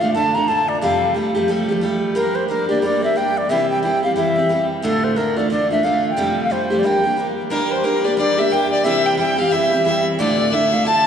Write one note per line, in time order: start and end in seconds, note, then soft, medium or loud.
0.01 0.13 D3 soft
0.01 0.14 A3 soft
0.01 0.15 D4 soft
0.01 0.15 F4 soft
0.01 0.13 F5 medium
0.14 0.35 D3 medium
0.14 0.36 A3 medium
0.14 0.35 D4 medium
0.14 0.33 F4 medium
0.14 0.36 A5 loud
0.34 0.47 D3 soft
0.34 0.48 A3 soft
0.34 0.49 D4 soft
0.34 0.48 F4 soft
0.34 0.50 A#5 medium
0.48 0.82 D3 medium
0.48 0.82 A3 soft
0.48 0.83 D4 medium
0.48 0.83 F4 medium
0.48 0.70 A5 medium
0.68 0.81 D5 medium
0.81 1.15 F2 medium
0.81 1.16 C3 medium
0.81 1.13 F3 medium
0.81 1.15 G3 medium
0.81 1.15 A3 medium
0.81 1.17 G4 medium
0.81 1.13 F5 medium
1.14 1.35 F3 soft
1.14 1.36 G3 soft
1.14 1.35 A3 soft
1.14 1.33 G4 soft
1.35 1.47 F3 soft
1.35 1.48 G3 soft
1.35 1.49 A3 soft
1.35 1.48 G4 medium
1.48 1.69 F3 medium
1.48 1.69 G3 medium
1.48 1.69 A3 medium
1.48 1.67 G4 medium
1.69 1.80 F3 soft
1.69 1.81 G3 soft
1.69 1.82 A3 soft
1.69 1.82 G4 soft
1.81 2.15 F3 medium
1.81 2.15 G3 medium
1.81 2.16 A3 medium
1.81 2.17 G4 medium
2.15 2.48 G3 medium
2.15 2.48 A#3 medium
2.15 2.50 D4 medium
2.15 2.51 G4 medium
2.15 2.37 A#4 medium
2.35 2.48 C5 medium
2.48 2.69 G3 soft
2.48 2.70 A#3 soft
2.48 2.70 D4 medium
2.48 2.68 G4 soft
2.48 2.68 A#4 medium
2.69 2.82 A#3 soft
2.69 2.83 D4 soft
2.69 2.82 G4 soft
2.69 2.82 D5 medium
2.82 3.03 G3 medium
2.82 3.03 A#3 medium
2.82 3.03 D4 medium
2.82 3.01 G4 medium
2.82 3.02 D5 medium
3.02 3.16 A#3 soft
3.02 3.17 D4 soft
3.02 3.16 G4 soft
3.02 3.19 E5 medium
3.15 3.49 G3 soft
3.15 3.50 A#3 soft
3.15 3.50 D4 medium
3.15 3.50 G4 medium
3.15 3.39 G5 medium
3.38 3.51 D5 medium
3.49 3.83 C3 medium
3.49 3.81 E3 medium
3.49 3.83 G3 medium
3.49 3.84 C4 medium
3.49 3.84 G4 medium
3.49 3.70 E5 loud
3.70 3.82 G5 medium
3.83 4.03 E3 medium
3.83 4.04 G3 soft
3.83 4.04 C4 medium
3.83 4.02 G4 medium
3.83 4.02 G5 medium
4.03 4.16 G3 soft
4.03 4.17 C4 soft
4.03 4.16 G4 soft
4.03 4.16 F5 medium
4.16 4.36 E3 medium
4.16 4.37 G3 medium
4.16 4.37 C4 medium
4.16 4.35 G4 medium
4.16 4.67 E5 medium
4.36 4.49 G3 soft
4.36 4.50 C4 soft
4.36 4.49 G4 soft
4.49 4.83 E3 soft
4.49 4.84 G3 soft
4.49 4.84 C4 medium
4.49 4.85 G4 medium
4.82 5.16 D2 medium
4.82 5.17 A2 medium
4.82 5.15 D3 medium
4.82 5.16 A3 medium
4.82 5.17 D4 medium
4.82 5.18 F4 medium
4.82 5.05 A4 medium
5.04 5.18 C5 medium
5.16 5.37 D3 soft
5.16 5.38 A3 medium
5.16 5.37 D4 medium
5.16 5.35 F4 medium
5.16 5.39 A#4 medium
5.36 5.49 D3 soft
5.36 5.50 A3 soft
5.36 5.51 D4 soft
5.36 5.50 F4 soft
5.36 5.50 D5 medium
5.50 5.70 D3 medium
5.50 5.71 A3 medium
5.50 5.71 D4 medium
5.50 5.69 F4 medium
5.50 5.69 D5 medium
5.71 5.82 D3 soft
5.71 5.83 A3 soft
5.71 5.84 D4 soft
5.71 5.84 F4 soft
5.71 5.85 E5 medium
5.83 6.17 D3 soft
5.83 6.17 A3 soft
5.83 6.18 D4 soft
5.83 6.18 F4 medium
5.83 6.09 F5 medium
6.10 6.41 G5 medium
6.16 6.50 F2 medium
6.16 6.50 C3 medium
6.16 6.49 F3 medium
6.16 6.51 G3 medium
6.16 6.51 A3 medium
6.16 6.53 G4 medium
6.44 6.53 F5 medium
6.50 6.71 F3 soft
6.50 6.71 G3 medium
6.50 6.70 A3 medium
6.50 6.69 G4 medium
6.50 6.81 C5 medium
6.70 6.83 F3 soft
6.70 6.82 G3 soft
6.70 6.84 A3 soft
6.70 6.84 G4 soft
6.79 7.04 G3 soft
6.79 6.87 D5 medium
6.84 7.05 A#3 medium
6.84 7.04 D4 medium
6.84 7.02 G4 medium
6.84 7.27 G5 medium
7.03 7.17 A#3 soft
7.03 7.18 D4 soft
7.03 7.17 G4 soft
7.17 7.50 G3 soft
7.17 7.50 A#3 soft
7.17 7.51 D4 medium
7.17 7.52 G4 medium
7.50 7.83 G3 medium
7.50 7.84 A#3 medium
7.50 7.85 D4 medium
7.50 7.87 G4 medium
7.50 7.73 A#4 medium
7.50 7.70 A#4 medium
7.71 7.86 C5 medium
7.84 8.04 G3 soft
7.84 8.05 A#3 medium
7.84 8.05 D4 medium
7.84 8.03 G4 soft
7.84 8.06 A#4 medium
7.84 8.04 A#4 medium
8.04 8.17 A#3 soft
8.04 8.18 D4 soft
8.04 8.18 G4 medium
8.04 8.17 D5 medium
8.17 8.38 G3 medium
8.17 8.38 A#3 medium
8.17 8.38 D4 medium
8.17 8.36 G4 medium
8.17 8.40 D5 medium
8.37 8.50 A#3 soft
8.37 8.51 D4 soft
8.37 8.51 G4 soft
8.37 8.54 E5 medium
8.37 8.50 E5 medium
8.50 8.84 G3 medium
8.50 8.85 A#3 medium
8.50 8.85 D4 medium
8.50 8.85 G4 medium
8.50 8.70 G5 medium
8.50 8.72 G5 medium
8.71 8.86 D5 medium
8.71 8.84 D5 medium
8.84 9.18 C3 medium
8.84 9.16 E3 medium
8.84 9.17 G3 medium
8.84 9.18 C4 medium
8.84 9.19 G4 medium
8.84 9.05 E5 medium
8.84 9.07 E5 medium
9.05 9.17 G5 medium
9.05 9.18 G5 medium
9.17 9.38 E3 medium
9.17 9.39 G3 medium
9.17 9.39 C4 medium
9.17 9.37 G4 medium
9.17 9.40 G5 medium
9.17 9.37 G5 medium
9.38 9.51 G3 soft
9.38 9.52 C4 soft
9.38 9.51 G4 medium
9.38 9.53 F5 medium
9.38 9.51 F5 medium
9.51 9.72 E3 medium
9.51 9.72 G3 medium
9.51 9.73 C4 medium
9.51 9.71 G4 medium
9.51 10.02 E5 medium
9.51 9.85 E5 medium
9.72 9.85 G3 soft
9.72 9.86 C4 soft
9.72 9.85 G4 soft
9.85 10.19 E3 medium
9.85 10.19 G3 soft
9.85 10.20 C4 medium
9.85 10.20 G4 medium
9.85 10.04 E5 medium
10.19 10.52 D2 medium
10.19 10.52 A2 medium
10.19 10.50 D3 medium
10.19 10.52 A3 medium
10.19 10.53 D4 medium
10.19 10.54 F4 medium
10.19 10.38 D5 medium
10.19 10.54 D5 medium
10.40 10.52 D5 medium
10.52 10.72 D3 medium
10.52 10.73 A3 medium
10.52 10.72 D4 medium
10.52 10.71 F4 medium
10.52 10.75 E5 medium
10.52 10.88 E5 medium
10.72 10.84 D3 soft
10.72 10.85 A3 soft
10.72 10.86 D4 soft
10.72 10.85 F4 medium
10.72 10.86 F5 medium
10.85 11.06 D3 medium
10.85 11.06 A3 medium
10.85 11.06 D4 medium
10.85 11.04 F4 medium
10.85 11.07 A5 medium
10.85 11.07 A5 loud